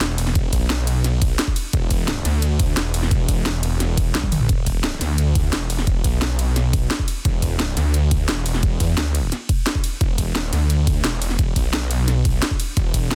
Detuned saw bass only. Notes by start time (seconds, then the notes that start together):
0.01 E1
0.53 B1
1.73 E1
2.25 D2
2.77 E1
3.28 E1
4.15 B1
4.49 E1
5.01 D2
5.53 E1
6.04 B1
7.25 E1
7.77 D2
8.29 E1
8.80 E2
8.97 D2
10.01 E1
10.53 D2
11.04 E1
11.56 B1
12.77 E1